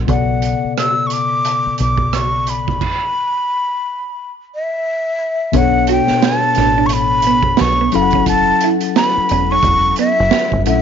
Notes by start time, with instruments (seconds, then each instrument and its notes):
0.07 fingered electric bass B1, tine electric piano B2 C#3 B3 A4 D5, flute F#5, kick, closed hi-hat
0.42 closed hi-hat
0.64 muted fingered electric bass stroke
0.77 flute E6, cross-stick, closed hi-hat
1.07 flute C#6, closed hi-hat
1.12 flute D6
1.45 closed hi-hat
1.67 muted fingered electric bass stroke
1.78 fingered electric bass B1, flute D6, closed hi-hat
1.97 kick
2.13 flute C#6, cross-stick, closed hi-hat
2.47 flute B5, closed hi-hat
2.68 kick, cross-stick
2.81 kick, crash
4.55 flute E5
5.52 fingered electric bass B1, tine electric piano B2 B3 D4 A4 C#5, kick, closed hi-hat
5.57 flute F#5
5.87 hollow-body jazz guitar F#4, closed hi-hat
5.91 flute G5
6.07 muted fingered electric bass stroke, snare
6.22 flute A5, muted hollow-body jazz guitar stroke, snare, closed hi-hat
6.55 fingered electric bass A1, hollow-body jazz guitar D4, snare, closed hi-hat
6.78 hollow-body jazz guitar D4
6.86 flute C#6, closed hi-hat
6.93 flute B5
7.22 closed hi-hat
7.27 hollow-body jazz guitar B3
7.43 kick
7.57 fingered electric bass B1, snare, closed hi-hat
7.61 flute C#6
7.81 hollow-body jazz guitar B3
7.92 fingered electric bass F#1, tine electric piano F#3 C#4 E4 A4 F5, flute B5, muted hollow-body jazz guitar stroke, closed hi-hat
8.02 tine electric piano F#5
8.11 kick, closed hi-hat
8.15 hollow-body jazz guitar C#4
8.26 flute A5, kick, closed hi-hat
8.60 hollow-body jazz guitar E4, closed hi-hat
8.80 closed hi-hat
8.96 flute B5, muted hollow-body jazz guitar stroke, snare, closed hi-hat
9.17 muted fingered electric bass stroke
9.29 fingered electric bass E1, hollow-body jazz guitar C#4, closed hi-hat
9.51 hollow-body jazz guitar C#4, flute C#6
9.63 fingered electric bass E1, kick, closed hi-hat
9.96 hollow-body jazz guitar B3, flute E5, closed hi-hat
10.20 fingered electric bass F#1
10.31 muted hollow-body jazz guitar stroke, snare, closed hi-hat
10.52 fingered electric bass G1, kick
10.66 fingered electric bass A#1, tine electric piano F#3 C#4 E4 A4 F#5, hollow-body jazz guitar A3, flute E5, closed hi-hat